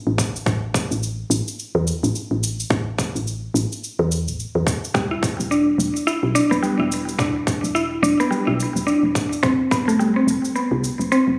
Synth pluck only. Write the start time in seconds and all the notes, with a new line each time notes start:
4.94 G3
5.11 E4
5.51 D4
6.07 E4
6.35 D4
6.51 B3
6.63 G3
6.80 E4
7.19 D4
7.75 E4
8.03 D4
8.20 B3
8.31 G3
8.47 E4
8.87 D4
9.43 C4
9.71 B3
9.88 A3
9.99 G3
10.16 C4
10.56 B3
11.12 C4